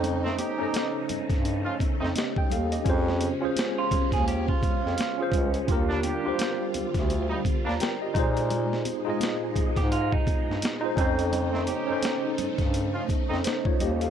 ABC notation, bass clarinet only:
X:1
M:4/4
L:1/16
Q:"Swing 16ths" 1/4=85
K:Fdor
V:1 name="Bass clarinet" clef=bass
F,,3 G,, z2 G,, G,,3 F,, F,, z2 E,,2 | F,,3 E,, z3 E,,3 F,, F,, z2 _D,,2 | E,,3 D,, z2 D,, D,,3 E,, E,, z2 B,,2- | B,,3 A,, z2 A,, A,,3 G,, G,, z2 F,,2- |
F,,3 G,, z2 G,, G,,3 F,, F,, z2 E,,2 |]